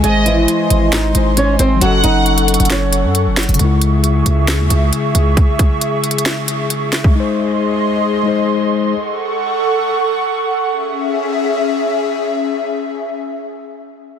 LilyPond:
<<
  \new Staff \with { instrumentName = "Violin section" } { \time 4/4 \key cis \minor \tempo 4 = 135 dis''4 r2. | fis''2 r2 | r1 | r1 |
r1 | r1 | r1 | r1 | }
  \new Staff \with { instrumentName = "Analog synth pad" } { \time 4/4 \key cis \minor <dis'' gis'' bis''>1 | <a' fis'' cis'''>1 | <gis' e'' cis'''>1~ | <gis' e'' cis'''>1 |
<gis' dis'' bis''>1 | <a' fis'' cis'''>1 | <cis' gis' e''>1~ | <cis' gis' e''>1 | }
  \new Staff \with { instrumentName = "Nylon-string guitar" } { \time 4/4 \key cis \minor <gis gis'>8 <e e'>4. <dis' dis''>4 <cis' cis''>8 <bis bis'>8 | <fis fis'>8 <dis' dis''>4. <cis' cis''>2 | r1 | r1 |
r1 | r1 | r1 | r1 | }
  \new Staff \with { instrumentName = "Tine electric piano" } { \time 4/4 \key cis \minor <gis bis' dis''>2~ <gis bis' dis''>8 <gis dis' bis'>4. | <fis cis' a'>1 | <cis gis e'>1~ | <cis gis e'>1 |
<gis dis' bis'>2~ <gis dis' bis'>8 <gis dis' bis'>4. | r1 | r1 | r1 | }
  \new Staff \with { instrumentName = "808-style bass" } { \clef bass \time 4/4 \key cis \minor gis,,4 r8 gis,,4 gis,,4 gis,,8 | fis,,8 fis,,4~ fis,,16 fis,,4 fis,8 fis,,8 fis,,16 | cis,4. cis,8. dis,16 cis,8 r8 cis,8 | r1 |
r1 | r1 | r1 | r1 | }
  \new DrumStaff \with { instrumentName = "Drums" } \drummode { \time 4/4 hh8 hh8 hh8 hh8 <hc hh sn>8 hh8 hh8 hh8 | hh8 hh8 hh16 hh16 hh32 hh32 hh32 hh32 <hc hh sn>8 hh8 hh8 <hc hh hho sn>32 hh32 hh32 hh32 | hh8 hh8 hh8 hh8 <hc hh sn>8 hh8 hh8 hh8 | <hh bd>8 <hh bd>8 \tuplet 3/2 { hh16 r16 r16 hh16 hh16 hh16 } <hc hh sn>8 hh8 hh8 <hc hh sn>16 bd16 |
r4 r4 r4 r4 | r4 r4 r4 r4 | r4 r4 r4 r4 | r4 r4 r4 r4 | }
>>